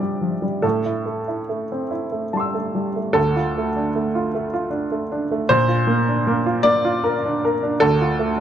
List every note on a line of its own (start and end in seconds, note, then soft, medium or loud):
0.00 0.60 C3 medium
0.00 0.21 F3 soft
0.00 0.42 G3 soft
0.00 0.66 D4 soft
0.00 0.67 E4 soft
0.00 0.63 D5 medium
0.00 0.66 E5 medium
0.21 0.42 F3 soft
0.42 0.63 G3 soft
0.62 3.13 A2 soft
0.62 1.92 A4 medium
0.86 1.20 E4 soft
1.06 1.41 A3 soft
1.28 1.62 E4 soft
1.49 1.83 A3 soft
1.72 2.05 C4 soft
1.91 2.25 E4 soft
2.12 2.46 A3 soft
2.33 2.55 G3 soft
2.33 3.13 A5 soft
2.33 3.15 C6 soft
2.40 3.16 E6 soft
2.54 2.89 A3 soft
2.75 2.96 G3 soft
2.96 3.17 A3 soft
3.13 5.44 D2 medium
3.13 5.47 A4 medium
3.36 3.68 F4 soft
3.58 3.88 A3 soft
3.76 4.07 D4 soft
3.96 4.26 A3 soft
4.15 4.46 F4 soft
4.35 4.65 A3 soft
4.53 4.84 F4 soft
4.70 5.02 D4 soft
4.92 5.22 A3 soft
5.12 5.42 D4 soft
5.31 5.50 A3 soft
5.49 7.74 A#2 medium
5.49 6.64 C5 loud
5.68 5.99 F4 soft
5.87 6.18 A#3 medium
6.09 6.38 D4 soft
6.27 6.57 A#3 medium
6.46 6.76 F4 medium
6.63 6.95 A#3 soft
6.63 7.77 D5 loud
6.85 7.14 F4 medium
7.04 7.33 A#4 medium
7.25 7.53 D4 medium
7.45 7.72 A#4 medium
7.63 7.80 D4 medium
7.80 8.40 D2 medium
7.80 8.40 A4 medium
8.01 8.30 F4 soft
8.19 8.40 A3 medium